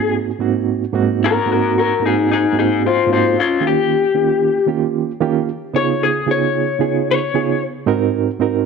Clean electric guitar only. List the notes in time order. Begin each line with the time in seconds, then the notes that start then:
Already playing: G#4
1.24 F#4 A#4
1.52 F#4 A#4
1.78 F#4 A#4
2.06 D#4 G#4
2.32 D#4 G#4
2.59 D#4 G#4
2.86 C4 F4
3.13 C4 F4
3.40 C#4 F4
3.67 G4
5.76 C#5
6.03 G#4
6.31 C#5
7.11 C#5